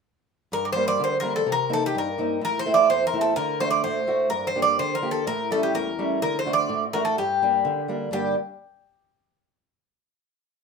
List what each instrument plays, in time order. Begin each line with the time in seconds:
0.52 steel-string acoustic guitar G2, bouzouki A#4
0.65 bouzouki D5
0.72 steel-string acoustic guitar G3 A#3 D4, bouzouki C5
0.88 bouzouki D5
1.00 steel-string acoustic guitar D3
1.04 bouzouki C5
1.20 steel-string acoustic guitar G3 A#3 D4, bouzouki A#4
1.36 bouzouki A4
1.47 steel-string acoustic guitar C3
1.52 bouzouki A#4
1.70 steel-string acoustic guitar A#3 C4 D#4, bouzouki A4
1.86 bouzouki G4
1.95 steel-string acoustic guitar G2, bouzouki A#4
2.18 steel-string acoustic guitar A#3 C4 D#4
2.41 steel-string acoustic guitar A2, bouzouki A#4
2.59 bouzouki C5
2.66 steel-string acoustic guitar A3 C4 E4
2.74 bouzouki D5
2.90 steel-string acoustic guitar E2, bouzouki C5
3.07 bouzouki A#4
3.13 steel-string acoustic guitar A3 C4 E4
3.21 bouzouki A4
3.36 steel-string acoustic guitar D3, bouzouki A#4
3.60 steel-string acoustic guitar A3 D4 F#4, bouzouki C5
3.71 bouzouki D5
3.84 steel-string acoustic guitar A2, bouzouki C5
4.07 steel-string acoustic guitar A3 D4 F#4
4.30 steel-string acoustic guitar G2, bouzouki A#4
4.47 bouzouki C5
4.56 steel-string acoustic guitar A#3 D4 G4
4.62 bouzouki D5
4.79 steel-string acoustic guitar D3, bouzouki C5
4.95 bouzouki A#4
5.02 steel-string acoustic guitar A#3 D4 G4
5.11 bouzouki A4
5.27 steel-string acoustic guitar A2, bouzouki A#4
5.51 steel-string acoustic guitar G3 A3 C#4, bouzouki A4
5.63 bouzouki G4
5.74 steel-string acoustic guitar E2, bouzouki A#4
5.99 steel-string acoustic guitar G3 A3 C#4
6.22 steel-string acoustic guitar D3, bouzouki A#4
6.39 bouzouki C5
6.45 steel-string acoustic guitar A3 D4 F#4
6.53 bouzouki D5
6.69 steel-string acoustic guitar A2
6.93 steel-string acoustic guitar A3 D4 F#4, bouzouki A#4
7.05 bouzouki A4
7.18 steel-string acoustic guitar G2, bouzouki G4
7.42 steel-string acoustic guitar G3 A#3 D4
7.65 steel-string acoustic guitar D3
7.88 steel-string acoustic guitar G3 A#3 D4
8.11 steel-string acoustic guitar G2 D3 G3 A#3 D4, bouzouki G4